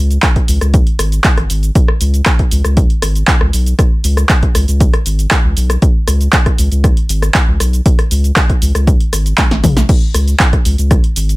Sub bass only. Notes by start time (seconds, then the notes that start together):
Already playing: C#2
0.48 C#2
0.61 C#2
0.99 G#1
1.38 G#1
1.50 G#1
2.01 C#2
2.52 C#2
2.65 C#2
3.03 G#1
3.41 C#2
3.53 B1
4.04 C#2
4.55 C#2
4.68 C#2
5.06 G#1
5.44 C#2
5.57 B1
6.08 C#2
6.59 C#2
6.72 C#2
7.09 G#1
7.48 C#2
7.60 B1
8.11 C#2
8.62 C#2
8.75 C#2
9.13 G#1
9.51 G#1
9.64 B1
10.14 C#2
10.65 C#2
10.78 C#2
11.16 G#1